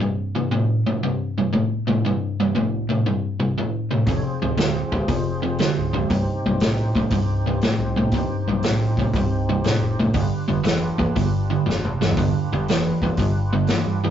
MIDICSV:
0, 0, Header, 1, 5, 480
1, 0, Start_track
1, 0, Key_signature, -3, "minor"
1, 0, Tempo, 506329
1, 10, Time_signature, 4, 2, 24, 8
1, 13370, End_track
2, 0, Start_track
2, 0, Title_t, "Tonewheel organ"
2, 0, Program_c, 0, 16
2, 3842, Note_on_c, 0, 66, 63
2, 3850, Note_on_c, 0, 73, 61
2, 3851, Note_on_c, 0, 69, 59
2, 3854, Note_on_c, 0, 61, 57
2, 4006, Note_on_c, 0, 60, 71
2, 4008, Note_on_c, 0, 65, 69
2, 4010, Note_off_c, 0, 66, 0
2, 4011, Note_on_c, 0, 72, 68
2, 4014, Note_off_c, 0, 69, 0
2, 4014, Note_off_c, 0, 73, 0
2, 4015, Note_on_c, 0, 68, 69
2, 4016, Note_off_c, 0, 61, 0
2, 5755, Note_off_c, 0, 60, 0
2, 5756, Note_off_c, 0, 65, 0
2, 5758, Note_off_c, 0, 72, 0
2, 5760, Note_off_c, 0, 68, 0
2, 5765, Note_on_c, 0, 67, 68
2, 5770, Note_on_c, 0, 60, 74
2, 5771, Note_on_c, 0, 63, 70
2, 5782, Note_on_c, 0, 72, 76
2, 9571, Note_off_c, 0, 67, 0
2, 9574, Note_off_c, 0, 60, 0
2, 9574, Note_off_c, 0, 63, 0
2, 9580, Note_off_c, 0, 72, 0
2, 9606, Note_on_c, 0, 62, 70
2, 9612, Note_on_c, 0, 71, 67
2, 9616, Note_on_c, 0, 65, 69
2, 9619, Note_on_c, 0, 67, 71
2, 13370, Note_off_c, 0, 62, 0
2, 13370, Note_off_c, 0, 65, 0
2, 13370, Note_off_c, 0, 67, 0
2, 13370, Note_off_c, 0, 71, 0
2, 13370, End_track
3, 0, Start_track
3, 0, Title_t, "Overdriven electric guitar"
3, 0, Program_c, 1, 29
3, 2, Note_on_c, 1, 36, 71
3, 14, Note_on_c, 1, 43, 78
3, 300, Note_off_c, 1, 36, 0
3, 306, Note_off_c, 1, 43, 0
3, 340, Note_on_c, 1, 36, 68
3, 343, Note_on_c, 1, 43, 67
3, 478, Note_off_c, 1, 36, 0
3, 479, Note_off_c, 1, 43, 0
3, 494, Note_on_c, 1, 36, 72
3, 497, Note_on_c, 1, 45, 82
3, 786, Note_off_c, 1, 36, 0
3, 788, Note_off_c, 1, 45, 0
3, 821, Note_on_c, 1, 36, 67
3, 821, Note_on_c, 1, 45, 85
3, 959, Note_off_c, 1, 36, 0
3, 959, Note_off_c, 1, 45, 0
3, 978, Note_on_c, 1, 36, 67
3, 980, Note_on_c, 1, 43, 89
3, 1269, Note_off_c, 1, 36, 0
3, 1270, Note_off_c, 1, 43, 0
3, 1306, Note_on_c, 1, 36, 63
3, 1306, Note_on_c, 1, 43, 61
3, 1436, Note_off_c, 1, 36, 0
3, 1442, Note_off_c, 1, 43, 0
3, 1448, Note_on_c, 1, 36, 75
3, 1454, Note_on_c, 1, 45, 71
3, 1744, Note_off_c, 1, 36, 0
3, 1747, Note_off_c, 1, 45, 0
3, 1773, Note_on_c, 1, 36, 71
3, 1781, Note_on_c, 1, 45, 78
3, 1916, Note_off_c, 1, 36, 0
3, 1920, Note_off_c, 1, 45, 0
3, 1941, Note_on_c, 1, 36, 72
3, 1954, Note_on_c, 1, 43, 97
3, 2231, Note_off_c, 1, 36, 0
3, 2238, Note_off_c, 1, 43, 0
3, 2276, Note_on_c, 1, 36, 70
3, 2280, Note_on_c, 1, 43, 75
3, 2407, Note_off_c, 1, 36, 0
3, 2410, Note_off_c, 1, 43, 0
3, 2420, Note_on_c, 1, 36, 77
3, 2428, Note_on_c, 1, 45, 79
3, 2711, Note_off_c, 1, 36, 0
3, 2715, Note_off_c, 1, 45, 0
3, 2740, Note_on_c, 1, 36, 67
3, 2748, Note_on_c, 1, 45, 77
3, 2880, Note_off_c, 1, 36, 0
3, 2884, Note_off_c, 1, 45, 0
3, 2903, Note_on_c, 1, 43, 77
3, 2905, Note_on_c, 1, 36, 79
3, 3193, Note_off_c, 1, 43, 0
3, 3194, Note_off_c, 1, 36, 0
3, 3220, Note_on_c, 1, 36, 59
3, 3223, Note_on_c, 1, 43, 65
3, 3360, Note_off_c, 1, 36, 0
3, 3362, Note_off_c, 1, 43, 0
3, 3393, Note_on_c, 1, 36, 68
3, 3398, Note_on_c, 1, 45, 83
3, 3678, Note_off_c, 1, 36, 0
3, 3681, Note_off_c, 1, 45, 0
3, 3704, Note_on_c, 1, 36, 73
3, 3708, Note_on_c, 1, 45, 65
3, 3843, Note_off_c, 1, 36, 0
3, 3844, Note_off_c, 1, 45, 0
3, 3867, Note_on_c, 1, 41, 74
3, 3873, Note_on_c, 1, 48, 86
3, 4156, Note_off_c, 1, 41, 0
3, 4159, Note_off_c, 1, 48, 0
3, 4189, Note_on_c, 1, 41, 65
3, 4192, Note_on_c, 1, 48, 68
3, 4326, Note_off_c, 1, 41, 0
3, 4327, Note_off_c, 1, 48, 0
3, 4337, Note_on_c, 1, 41, 64
3, 4341, Note_on_c, 1, 50, 86
3, 4631, Note_off_c, 1, 41, 0
3, 4633, Note_off_c, 1, 50, 0
3, 4665, Note_on_c, 1, 50, 81
3, 4669, Note_on_c, 1, 41, 68
3, 4804, Note_off_c, 1, 50, 0
3, 4806, Note_off_c, 1, 41, 0
3, 4820, Note_on_c, 1, 41, 70
3, 4823, Note_on_c, 1, 48, 72
3, 5112, Note_off_c, 1, 41, 0
3, 5114, Note_off_c, 1, 48, 0
3, 5143, Note_on_c, 1, 41, 63
3, 5150, Note_on_c, 1, 48, 57
3, 5283, Note_off_c, 1, 41, 0
3, 5286, Note_off_c, 1, 48, 0
3, 5306, Note_on_c, 1, 41, 70
3, 5313, Note_on_c, 1, 50, 78
3, 5595, Note_off_c, 1, 41, 0
3, 5599, Note_off_c, 1, 50, 0
3, 5626, Note_on_c, 1, 41, 75
3, 5633, Note_on_c, 1, 50, 79
3, 5764, Note_off_c, 1, 41, 0
3, 5768, Note_off_c, 1, 50, 0
3, 5790, Note_on_c, 1, 36, 68
3, 5795, Note_on_c, 1, 43, 74
3, 6077, Note_off_c, 1, 36, 0
3, 6080, Note_off_c, 1, 43, 0
3, 6124, Note_on_c, 1, 36, 63
3, 6129, Note_on_c, 1, 43, 78
3, 6253, Note_off_c, 1, 36, 0
3, 6256, Note_off_c, 1, 43, 0
3, 6270, Note_on_c, 1, 36, 71
3, 6276, Note_on_c, 1, 45, 86
3, 6558, Note_off_c, 1, 36, 0
3, 6561, Note_off_c, 1, 45, 0
3, 6593, Note_on_c, 1, 36, 65
3, 6602, Note_on_c, 1, 45, 85
3, 6728, Note_off_c, 1, 36, 0
3, 6732, Note_off_c, 1, 45, 0
3, 6747, Note_on_c, 1, 36, 83
3, 6755, Note_on_c, 1, 43, 77
3, 7036, Note_off_c, 1, 36, 0
3, 7040, Note_off_c, 1, 43, 0
3, 7074, Note_on_c, 1, 36, 57
3, 7083, Note_on_c, 1, 43, 71
3, 7208, Note_off_c, 1, 36, 0
3, 7213, Note_off_c, 1, 43, 0
3, 7232, Note_on_c, 1, 36, 65
3, 7240, Note_on_c, 1, 45, 73
3, 7518, Note_off_c, 1, 36, 0
3, 7522, Note_off_c, 1, 45, 0
3, 7550, Note_on_c, 1, 36, 72
3, 7561, Note_on_c, 1, 45, 77
3, 7686, Note_off_c, 1, 36, 0
3, 7691, Note_off_c, 1, 45, 0
3, 7717, Note_on_c, 1, 36, 73
3, 7721, Note_on_c, 1, 43, 86
3, 8000, Note_off_c, 1, 36, 0
3, 8003, Note_off_c, 1, 43, 0
3, 8037, Note_on_c, 1, 36, 72
3, 8045, Note_on_c, 1, 43, 74
3, 8169, Note_off_c, 1, 36, 0
3, 8173, Note_off_c, 1, 43, 0
3, 8190, Note_on_c, 1, 36, 68
3, 8195, Note_on_c, 1, 45, 85
3, 8477, Note_off_c, 1, 36, 0
3, 8479, Note_off_c, 1, 45, 0
3, 8520, Note_on_c, 1, 36, 69
3, 8526, Note_on_c, 1, 45, 77
3, 8651, Note_off_c, 1, 36, 0
3, 8653, Note_off_c, 1, 45, 0
3, 8680, Note_on_c, 1, 36, 68
3, 8683, Note_on_c, 1, 43, 92
3, 8961, Note_off_c, 1, 36, 0
3, 8963, Note_off_c, 1, 43, 0
3, 8997, Note_on_c, 1, 36, 63
3, 9000, Note_on_c, 1, 43, 76
3, 9129, Note_off_c, 1, 36, 0
3, 9130, Note_off_c, 1, 43, 0
3, 9144, Note_on_c, 1, 36, 77
3, 9153, Note_on_c, 1, 45, 74
3, 9433, Note_off_c, 1, 36, 0
3, 9438, Note_off_c, 1, 45, 0
3, 9475, Note_on_c, 1, 36, 72
3, 9480, Note_on_c, 1, 45, 80
3, 9608, Note_off_c, 1, 36, 0
3, 9610, Note_off_c, 1, 45, 0
3, 9617, Note_on_c, 1, 50, 92
3, 9618, Note_on_c, 1, 43, 73
3, 9909, Note_off_c, 1, 50, 0
3, 9910, Note_off_c, 1, 43, 0
3, 9938, Note_on_c, 1, 43, 70
3, 9943, Note_on_c, 1, 50, 77
3, 10078, Note_off_c, 1, 43, 0
3, 10081, Note_off_c, 1, 50, 0
3, 10090, Note_on_c, 1, 43, 73
3, 10092, Note_on_c, 1, 52, 88
3, 10385, Note_off_c, 1, 43, 0
3, 10386, Note_off_c, 1, 52, 0
3, 10412, Note_on_c, 1, 43, 66
3, 10420, Note_on_c, 1, 52, 76
3, 10555, Note_off_c, 1, 43, 0
3, 10559, Note_off_c, 1, 52, 0
3, 10578, Note_on_c, 1, 43, 77
3, 10578, Note_on_c, 1, 50, 76
3, 10868, Note_off_c, 1, 43, 0
3, 10869, Note_off_c, 1, 50, 0
3, 10903, Note_on_c, 1, 50, 72
3, 10904, Note_on_c, 1, 43, 59
3, 11040, Note_off_c, 1, 43, 0
3, 11040, Note_off_c, 1, 50, 0
3, 11055, Note_on_c, 1, 43, 76
3, 11055, Note_on_c, 1, 52, 81
3, 11347, Note_off_c, 1, 43, 0
3, 11347, Note_off_c, 1, 52, 0
3, 11389, Note_on_c, 1, 43, 67
3, 11394, Note_on_c, 1, 52, 71
3, 11522, Note_off_c, 1, 43, 0
3, 11525, Note_off_c, 1, 52, 0
3, 11551, Note_on_c, 1, 43, 72
3, 11552, Note_on_c, 1, 50, 79
3, 11834, Note_off_c, 1, 43, 0
3, 11835, Note_off_c, 1, 50, 0
3, 11881, Note_on_c, 1, 43, 62
3, 11885, Note_on_c, 1, 50, 76
3, 12008, Note_off_c, 1, 43, 0
3, 12010, Note_off_c, 1, 50, 0
3, 12039, Note_on_c, 1, 43, 77
3, 12044, Note_on_c, 1, 52, 87
3, 12318, Note_off_c, 1, 43, 0
3, 12320, Note_off_c, 1, 52, 0
3, 12355, Note_on_c, 1, 43, 73
3, 12359, Note_on_c, 1, 52, 74
3, 12485, Note_off_c, 1, 43, 0
3, 12486, Note_off_c, 1, 52, 0
3, 12509, Note_on_c, 1, 43, 79
3, 12514, Note_on_c, 1, 50, 73
3, 12792, Note_off_c, 1, 43, 0
3, 12795, Note_off_c, 1, 50, 0
3, 12828, Note_on_c, 1, 43, 65
3, 12832, Note_on_c, 1, 50, 65
3, 12960, Note_off_c, 1, 43, 0
3, 12962, Note_off_c, 1, 50, 0
3, 12990, Note_on_c, 1, 43, 81
3, 12994, Note_on_c, 1, 52, 82
3, 13272, Note_off_c, 1, 43, 0
3, 13274, Note_off_c, 1, 52, 0
3, 13310, Note_on_c, 1, 43, 78
3, 13316, Note_on_c, 1, 52, 70
3, 13370, Note_off_c, 1, 43, 0
3, 13370, Note_off_c, 1, 52, 0
3, 13370, End_track
4, 0, Start_track
4, 0, Title_t, "Fingered electric bass"
4, 0, Program_c, 2, 33
4, 3854, Note_on_c, 2, 29, 92
4, 3984, Note_off_c, 2, 29, 0
4, 4196, Note_on_c, 2, 26, 81
4, 4568, Note_off_c, 2, 26, 0
4, 4666, Note_on_c, 2, 26, 87
4, 4726, Note_off_c, 2, 26, 0
4, 4821, Note_on_c, 2, 29, 89
4, 5325, Note_off_c, 2, 29, 0
4, 5481, Note_on_c, 2, 25, 88
4, 5723, Note_off_c, 2, 25, 0
4, 5779, Note_on_c, 2, 24, 93
4, 5907, Note_off_c, 2, 24, 0
4, 6113, Note_on_c, 2, 35, 84
4, 6487, Note_off_c, 2, 35, 0
4, 6585, Note_on_c, 2, 35, 78
4, 6645, Note_off_c, 2, 35, 0
4, 6740, Note_on_c, 2, 24, 88
4, 7244, Note_off_c, 2, 24, 0
4, 7383, Note_on_c, 2, 36, 91
4, 7632, Note_off_c, 2, 36, 0
4, 7701, Note_on_c, 2, 24, 94
4, 7828, Note_off_c, 2, 24, 0
4, 8035, Note_on_c, 2, 35, 78
4, 8407, Note_off_c, 2, 35, 0
4, 8507, Note_on_c, 2, 35, 79
4, 8566, Note_off_c, 2, 35, 0
4, 8664, Note_on_c, 2, 24, 89
4, 9165, Note_off_c, 2, 24, 0
4, 9304, Note_on_c, 2, 29, 83
4, 9551, Note_off_c, 2, 29, 0
4, 9614, Note_on_c, 2, 31, 93
4, 9742, Note_off_c, 2, 31, 0
4, 9951, Note_on_c, 2, 29, 83
4, 10324, Note_off_c, 2, 29, 0
4, 10420, Note_on_c, 2, 29, 69
4, 10480, Note_off_c, 2, 29, 0
4, 10582, Note_on_c, 2, 31, 95
4, 10955, Note_off_c, 2, 31, 0
4, 11057, Note_on_c, 2, 29, 82
4, 11348, Note_off_c, 2, 29, 0
4, 11393, Note_on_c, 2, 31, 81
4, 11525, Note_off_c, 2, 31, 0
4, 11544, Note_on_c, 2, 31, 92
4, 11667, Note_off_c, 2, 31, 0
4, 11868, Note_on_c, 2, 29, 87
4, 12240, Note_off_c, 2, 29, 0
4, 12342, Note_on_c, 2, 29, 85
4, 12400, Note_off_c, 2, 29, 0
4, 12493, Note_on_c, 2, 31, 84
4, 12996, Note_off_c, 2, 31, 0
4, 13143, Note_on_c, 2, 43, 88
4, 13370, Note_off_c, 2, 43, 0
4, 13370, End_track
5, 0, Start_track
5, 0, Title_t, "Drums"
5, 3856, Note_on_c, 9, 36, 106
5, 3856, Note_on_c, 9, 46, 45
5, 3951, Note_off_c, 9, 36, 0
5, 3951, Note_off_c, 9, 46, 0
5, 4335, Note_on_c, 9, 46, 42
5, 4350, Note_on_c, 9, 38, 103
5, 4430, Note_off_c, 9, 46, 0
5, 4445, Note_off_c, 9, 38, 0
5, 4666, Note_on_c, 9, 36, 77
5, 4761, Note_off_c, 9, 36, 0
5, 4819, Note_on_c, 9, 36, 103
5, 4824, Note_on_c, 9, 46, 50
5, 4914, Note_off_c, 9, 36, 0
5, 4918, Note_off_c, 9, 46, 0
5, 5294, Note_on_c, 9, 46, 47
5, 5309, Note_on_c, 9, 38, 94
5, 5388, Note_off_c, 9, 46, 0
5, 5404, Note_off_c, 9, 38, 0
5, 5784, Note_on_c, 9, 36, 107
5, 5786, Note_on_c, 9, 46, 52
5, 5879, Note_off_c, 9, 36, 0
5, 5881, Note_off_c, 9, 46, 0
5, 6257, Note_on_c, 9, 46, 47
5, 6272, Note_on_c, 9, 38, 101
5, 6351, Note_off_c, 9, 46, 0
5, 6367, Note_off_c, 9, 38, 0
5, 6587, Note_on_c, 9, 36, 82
5, 6682, Note_off_c, 9, 36, 0
5, 6734, Note_on_c, 9, 46, 48
5, 6741, Note_on_c, 9, 36, 99
5, 6829, Note_off_c, 9, 46, 0
5, 6835, Note_off_c, 9, 36, 0
5, 7217, Note_on_c, 9, 46, 43
5, 7232, Note_on_c, 9, 38, 90
5, 7312, Note_off_c, 9, 46, 0
5, 7327, Note_off_c, 9, 38, 0
5, 7693, Note_on_c, 9, 46, 43
5, 7700, Note_on_c, 9, 36, 103
5, 7788, Note_off_c, 9, 46, 0
5, 7795, Note_off_c, 9, 36, 0
5, 8177, Note_on_c, 9, 46, 48
5, 8193, Note_on_c, 9, 38, 94
5, 8272, Note_off_c, 9, 46, 0
5, 8287, Note_off_c, 9, 38, 0
5, 8505, Note_on_c, 9, 36, 84
5, 8600, Note_off_c, 9, 36, 0
5, 8660, Note_on_c, 9, 36, 103
5, 8661, Note_on_c, 9, 46, 42
5, 8755, Note_off_c, 9, 36, 0
5, 8756, Note_off_c, 9, 46, 0
5, 9139, Note_on_c, 9, 46, 51
5, 9154, Note_on_c, 9, 38, 87
5, 9234, Note_off_c, 9, 46, 0
5, 9249, Note_off_c, 9, 38, 0
5, 9609, Note_on_c, 9, 46, 50
5, 9615, Note_on_c, 9, 36, 107
5, 9704, Note_off_c, 9, 46, 0
5, 9710, Note_off_c, 9, 36, 0
5, 10093, Note_on_c, 9, 46, 48
5, 10108, Note_on_c, 9, 38, 99
5, 10187, Note_off_c, 9, 46, 0
5, 10203, Note_off_c, 9, 38, 0
5, 10423, Note_on_c, 9, 36, 80
5, 10518, Note_off_c, 9, 36, 0
5, 10581, Note_on_c, 9, 36, 104
5, 10588, Note_on_c, 9, 46, 53
5, 10676, Note_off_c, 9, 36, 0
5, 10683, Note_off_c, 9, 46, 0
5, 11085, Note_on_c, 9, 38, 54
5, 11180, Note_off_c, 9, 38, 0
5, 11229, Note_on_c, 9, 47, 60
5, 11324, Note_off_c, 9, 47, 0
5, 11392, Note_on_c, 9, 38, 84
5, 11464, Note_on_c, 9, 43, 83
5, 11487, Note_off_c, 9, 38, 0
5, 11534, Note_on_c, 9, 46, 49
5, 11539, Note_on_c, 9, 36, 114
5, 11559, Note_off_c, 9, 43, 0
5, 11629, Note_off_c, 9, 46, 0
5, 11634, Note_off_c, 9, 36, 0
5, 12022, Note_on_c, 9, 46, 44
5, 12037, Note_on_c, 9, 38, 91
5, 12117, Note_off_c, 9, 46, 0
5, 12132, Note_off_c, 9, 38, 0
5, 12340, Note_on_c, 9, 36, 79
5, 12435, Note_off_c, 9, 36, 0
5, 12485, Note_on_c, 9, 46, 49
5, 12493, Note_on_c, 9, 36, 99
5, 12580, Note_off_c, 9, 46, 0
5, 12588, Note_off_c, 9, 36, 0
5, 12959, Note_on_c, 9, 46, 41
5, 12974, Note_on_c, 9, 38, 93
5, 13053, Note_off_c, 9, 46, 0
5, 13069, Note_off_c, 9, 38, 0
5, 13370, End_track
0, 0, End_of_file